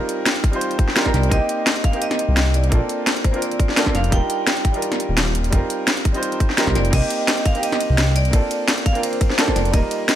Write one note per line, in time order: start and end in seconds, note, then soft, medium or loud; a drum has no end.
0.00 0.49 G3 medium
0.00 0.50 C4 medium
0.00 0.51 D#4 medium
0.00 0.52 F4 medium
0.00 0.52 A#4 loud
0.09 closed hi-hat medium
0.26 snare loud
0.26 closed hi-hat medium
0.36 closed hi-hat soft
0.44 kick loud
0.44 closed hi-hat medium
0.51 0.94 G3 medium
0.51 0.94 C4 medium
0.51 0.95 D#4 medium
0.51 0.95 F4 medium
0.51 closed hi-hat soft
0.56 0.96 C5 medium
0.61 closed hi-hat medium
0.71 closed hi-hat soft
0.79 kick loud
0.79 closed hi-hat medium
0.88 snare soft
0.95 1.03 G3 medium
0.95 1.03 C4 medium
0.95 1.03 D#4 medium
0.95 1.04 F4 medium
0.95 1.04 A#4 medium
0.95 snare loud
0.95 closed hi-hat medium
1.05 1.29 G3 medium
1.05 1.29 C4 medium
1.05 1.30 D#4 medium
1.05 1.30 F4 medium
1.05 1.30 A#4 loud
1.05 kick medium
1.05 snare medium
1.14 1.30 C2 medium
1.14 1.30 D5 medium
1.14 snare soft
1.14 closed hi-hat medium
1.23 closed hi-hat soft
1.29 1.40 C2 loud
1.29 1.90 A#3 medium
1.29 1.91 C4 medium
1.29 1.92 D#4 medium
1.29 1.81 D#5 medium
1.29 kick loud
1.29 closed hi-hat medium
1.34 1.93 G4 loud
1.49 closed hi-hat medium
1.67 snare loud
1.67 closed hi-hat medium
1.76 closed hi-hat soft
1.84 2.02 F5 medium
1.84 kick loud
1.84 closed hi-hat medium
1.91 2.68 A#3 medium
1.91 2.69 C4 medium
1.91 2.71 D#4 medium
1.91 closed hi-hat soft
1.96 2.71 G4 medium
2.02 2.51 D#5 medium
2.02 closed hi-hat medium
2.11 snare medium
2.11 closed hi-hat soft
2.19 closed hi-hat medium
2.29 2.71 C2 medium
2.37 snare loud
2.37 closed hi-hat medium
2.54 3.03 D5 loud
2.54 closed hi-hat medium
2.64 closed hi-hat soft
2.70 2.80 A#1 loud
2.70 3.30 A#3 medium
2.70 3.31 C4 medium
2.70 3.32 D4 medium
2.70 3.32 F4 medium
2.70 kick loud
2.70 closed hi-hat medium
2.75 3.33 A4 medium
2.89 closed hi-hat medium
3.07 snare loud
3.07 closed hi-hat medium
3.16 closed hi-hat soft
3.24 3.43 C5 medium
3.24 kick loud
3.24 closed hi-hat medium
3.31 3.74 A#3 medium
3.31 3.75 C4 medium
3.31 3.76 D4 medium
3.31 3.76 F4 medium
3.31 closed hi-hat soft
3.36 3.77 A#4 medium
3.42 3.91 D5 loud
3.42 closed hi-hat medium
3.51 closed hi-hat soft
3.60 kick loud
3.60 closed hi-hat medium
3.69 snare soft
3.76 3.84 A#3 medium
3.76 3.84 C4 medium
3.76 3.84 D4 medium
3.76 3.85 F4 medium
3.76 3.85 A4 loud
3.76 snare loud
3.76 closed hi-hat medium
3.85 4.10 A#3 medium
3.85 4.10 C4 medium
3.85 4.10 D4 medium
3.85 4.11 F4 medium
3.85 4.11 A4 medium
3.85 kick medium
3.85 snare medium
3.95 4.11 F1 medium
3.95 4.13 F5 loud
3.95 snare soft
3.95 closed hi-hat medium
4.04 closed hi-hat soft
4.10 4.21 D#1 loud
4.10 4.70 G3 medium
4.10 4.71 D4 medium
4.10 4.72 D#4 medium
4.10 4.73 F4 medium
4.10 4.79 G5 loud
4.10 kick loud
4.10 closed hi-hat loud
4.15 4.73 A#4 loud
4.30 closed hi-hat medium
4.47 snare loud
4.47 closed hi-hat loud
4.57 closed hi-hat soft
4.65 kick loud
4.65 closed hi-hat medium
4.72 5.49 G3 medium
4.72 5.50 D4 medium
4.72 5.51 D#4 medium
4.72 5.51 F4 medium
4.72 closed hi-hat soft
4.77 5.52 A#4 medium
4.82 closed hi-hat medium
4.92 snare medium
4.92 closed hi-hat soft
5.00 closed hi-hat medium
5.09 5.51 D#1 medium
5.17 snare loud
5.17 closed hi-hat loud
5.35 closed hi-hat medium
5.44 closed hi-hat soft
5.50 5.61 F1 loud
5.50 6.11 G3 medium
5.50 6.12 C4 medium
5.50 6.12 D#4 medium
5.50 6.13 F4 medium
5.50 kick loud
5.50 closed hi-hat loud
5.55 6.14 A#4 medium
5.70 closed hi-hat medium
5.88 snare loud
5.88 closed hi-hat loud
5.97 closed hi-hat soft
6.05 kick loud
6.05 closed hi-hat medium
6.12 6.55 G3 medium
6.12 6.56 C4 medium
6.12 6.56 D#4 medium
6.12 6.57 F4 medium
6.12 closed hi-hat soft
6.17 6.58 C5 medium
6.23 closed hi-hat loud
6.32 closed hi-hat soft
6.40 kick loud
6.40 closed hi-hat medium
6.50 snare soft
6.57 6.64 G3 medium
6.57 6.65 C4 medium
6.57 6.65 D#4 medium
6.57 6.65 F4 medium
6.57 6.66 A#4 loud
6.57 snare loud
6.57 closed hi-hat loud
6.66 6.77 C2 loud
6.66 6.90 G3 medium
6.66 6.90 C4 medium
6.66 6.91 D#4 medium
6.66 6.91 F4 medium
6.66 6.92 A#4 medium
6.66 kick medium
6.66 snare medium
6.75 6.91 F1 medium
6.75 6.92 D5 medium
6.75 snare soft
6.75 closed hi-hat medium
6.85 closed hi-hat soft
6.90 7.01 C2 loud
6.90 7.51 A#3 medium
6.90 7.52 C4 medium
6.90 7.53 D#4 medium
6.90 7.47 D#5 loud
6.90 kick loud
6.90 closed hi-hat loud
6.90 crash medium
6.90 ride medium
6.95 7.54 G4 loud
7.10 closed hi-hat medium
7.10 ride medium
7.28 snare loud
7.28 closed hi-hat loud
7.28 ride medium
7.37 closed hi-hat soft
7.46 7.64 F5 loud
7.46 kick loud
7.46 closed hi-hat medium
7.46 ride medium
7.52 8.29 A#3 medium
7.52 8.30 C4 medium
7.52 8.32 D#4 medium
7.52 closed hi-hat soft
7.57 8.33 G4 medium
7.63 8.12 D#5 loud
7.63 closed hi-hat loud
7.63 ride medium
7.72 snare medium
7.72 closed hi-hat soft
7.80 closed hi-hat medium
7.80 ride medium
7.90 8.32 C2 medium
7.98 snare loud
7.98 closed hi-hat loud
7.98 ride medium
8.16 8.65 D5 loud
8.16 closed hi-hat medium
8.16 ride medium
8.25 closed hi-hat soft
8.31 8.42 A#1 loud
8.31 8.91 A#3 medium
8.31 8.92 C4 medium
8.31 8.93 D4 medium
8.31 8.94 F4 medium
8.31 kick loud
8.31 closed hi-hat medium
8.31 ride medium
8.36 8.94 A4 medium
8.51 closed hi-hat medium
8.51 ride soft
8.68 snare loud
8.68 closed hi-hat loud
8.68 ride medium
8.78 closed hi-hat soft
8.86 8.94 F5 loud
8.86 kick loud
8.86 closed hi-hat medium
8.86 ride medium
8.93 9.36 A#3 medium
8.93 9.36 C4 medium
8.93 9.37 D4 medium
8.93 9.38 F4 medium
8.93 closed hi-hat soft
8.98 9.38 A#4 medium
9.03 9.58 C5 medium
9.03 closed hi-hat loud
9.03 ride medium
9.13 closed hi-hat soft
9.21 kick loud
9.21 closed hi-hat medium
9.21 ride medium
9.30 snare soft
9.37 9.45 A#3 medium
9.37 9.45 C4 medium
9.37 9.46 D4 medium
9.37 9.46 F4 medium
9.37 9.46 A4 loud
9.37 snare loud
9.37 closed hi-hat loud
9.37 ride medium
9.47 9.71 A#3 medium
9.47 9.71 C4 medium
9.47 9.72 D4 medium
9.47 9.72 F4 medium
9.47 9.72 A4 loud
9.47 kick medium
9.47 snare medium
9.56 9.72 F1 medium
9.56 9.74 D5 medium
9.56 snare soft
9.56 closed hi-hat medium
9.56 ride medium
9.65 closed hi-hat soft
9.71 9.82 D#1 loud
9.71 10.15 G3 medium
9.71 10.15 A#3 medium
9.71 10.15 D#4 medium
9.71 10.15 F4 medium
9.71 10.15 D#5 medium
9.71 kick loud
9.71 closed hi-hat medium
9.71 ride medium
9.76 10.15 A#4 loud
9.91 closed hi-hat medium
9.91 ride medium
10.09 snare loud
10.09 closed hi-hat medium
10.09 ride medium